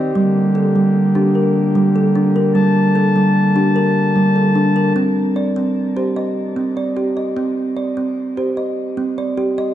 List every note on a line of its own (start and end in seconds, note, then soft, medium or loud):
0.00 0.12 D#3 soft
0.00 0.11 C4 soft
0.00 0.16 G4 medium
0.00 2.52 G4 medium
0.00 0.15 D5 medium
0.00 0.36 D#5 medium
0.14 4.92 D3 medium
0.14 0.55 G3 medium
0.14 4.92 A#3 soft
0.55 1.16 A4 medium
0.76 1.16 G3 medium
1.15 1.56 D4 medium
1.15 1.75 G4 medium
1.35 1.96 A#4 medium
1.75 2.16 G3 medium
1.96 2.56 A4 medium
2.15 2.56 D4 medium
2.36 2.96 A#4 medium
2.54 2.96 G3 medium
2.54 4.93 A5 medium
2.95 3.56 A4 medium
3.16 3.56 G3 medium
3.56 3.96 D4 medium
3.56 4.16 G4 soft
3.76 4.36 A#4 medium
4.16 4.56 G3 medium
4.36 4.96 A4 soft
4.55 4.96 D4 medium
4.76 5.16 A#4 medium
4.96 5.55 C4 medium
5.36 5.96 D5 medium
5.56 5.96 C4 medium
5.96 6.37 G4 medium
5.96 6.56 C5 medium
6.16 6.77 D#5 medium
6.56 6.97 C4 medium
6.77 7.37 D5 medium
6.97 7.37 G4 medium
7.17 7.77 D#5 soft
7.37 7.96 C4 medium
7.77 8.37 D5 soft
7.97 8.37 C4 medium
8.37 8.77 G4 medium
8.37 8.97 C5 soft
8.57 9.18 D#5 medium
8.97 9.37 C4 medium
9.18 9.74 D5 medium
9.38 9.74 G4 medium
9.58 9.74 D#5 medium